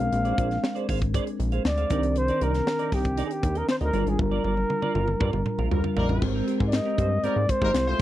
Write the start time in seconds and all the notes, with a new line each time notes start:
Already playing: G#3 C4 D4 A#4 F5
0.00 muted clean electric guitar stroke, closed hi-hat
0.12 A#1, muted clean electric guitar stroke, closed hi-hat
0.25 G#4 C5 D5, closed hi-hat
0.38 A#1 G#4 C5 D5, kick, closed hi-hat
0.50 muted clean electric guitar stroke, snare, closed hi-hat
0.63 muted clean electric guitar stroke, snare
0.75 G#4 C5 D5, closed hi-hat
0.88 G#1 G#4 C5 F5, kick, open hi-hat
1.01 muted clean electric guitar stroke, kick, closed hi-hat
1.14 G#4 C5 D5, kick, closed hi-hat
1.26 muted clean electric guitar stroke, closed hi-hat
1.39 A#1, muted clean electric guitar stroke, closed hi-hat
1.52 G#4 C5 F5, closed hi-hat
1.65 D2 D5, muted clean electric guitar stroke, snare
1.77 G#4 C5 F5, closed hi-hat
1.89 C2 D#3 C4 D4 D#4 A#4 D5, kick, closed hi-hat
2.03 muted clean electric guitar stroke, closed hi-hat
2.16 C5, muted clean electric guitar stroke, closed hi-hat
2.28 D#4 A#4 D5, closed hi-hat
2.41 C2 D#4 A#4 D5, closed hi-hat
2.54 muted clean electric guitar stroke, snare, closed hi-hat
2.67 muted clean electric guitar stroke, snare
2.79 D#4 A#4 D5, closed hi-hat
2.92 C2 D#4 G4 A#4 D#5, kick, snare, open hi-hat
3.05 muted clean electric guitar stroke, kick, closed hi-hat
3.17 D#4 A#4 D5, closed hi-hat
3.26 G#4
3.30 G4, muted clean electric guitar stroke, closed hi-hat
3.43 D#2, muted clean electric guitar stroke, kick, closed hi-hat
3.55 D#4 A#4 D#5, closed hi-hat
3.68 C5, muted clean electric guitar stroke, snare
3.81 D2 D#4 A#4 D#5, closed hi-hat
3.93 G1 G3 D4 F4 G#4 A#4 D5, closed hi-hat
4.02 A#4
4.06 G#1 G#4, muted clean electric guitar stroke, closed hi-hat
4.19 G1 A#4, muted clean electric guitar stroke, kick, high tom
4.31 F4 A#4 D5, high tom
4.44 G1 F4 A#4 D5, high tom
4.57 muted clean electric guitar stroke, high tom
4.69 muted clean electric guitar stroke, mid tom
4.82 F4 A#4 D5, mid tom
4.95 G1 F4 A#4 F5, mid tom
5.08 muted clean electric guitar stroke, mid tom
5.20 G2 F4 A#4 D5, kick, mid tom
5.33 G1, muted clean electric guitar stroke, mid tom
5.46 muted clean electric guitar stroke, mid tom
5.58 A#1 F4 A#4 F5, mid tom
5.71 D2 G3 A#3 D4 F4 A#4, muted clean electric guitar stroke, floor tom
5.84 F4 A#4 F5, floor tom
5.96 A#1 G3 A#3 D#4 F4 A#4 D5, floor tom
6.09 A1, muted clean electric guitar stroke, floor tom
6.21 G#1 G#3 C4 G4 A#4, muted clean electric guitar stroke, kick, crash
6.35 C4 G4 A#4
6.47 C4 G4 A#4, closed hi-hat
6.60 G#2, muted clean electric guitar stroke, kick
6.68 D5
6.72 D#5, snare, closed hi-hat
6.85 C4 G4 A#4
6.98 G2 C4 G4 C5, kick, closed hi-hat
7.11 muted clean electric guitar stroke
7.24 G#2 G3 A#3 C4 D#4 G4 A#4 D5, closed hi-hat
7.36 G#2, muted clean electric guitar stroke
7.49 C5, muted clean electric guitar stroke, kick, closed hi-hat
7.62 G#1 G3 A#3 C4 D#4 G4 A#4 C5, kick
7.74 C2, snare, closed hi-hat
7.87 A3 C4 F4 C5, muted clean electric guitar stroke
7.98 F3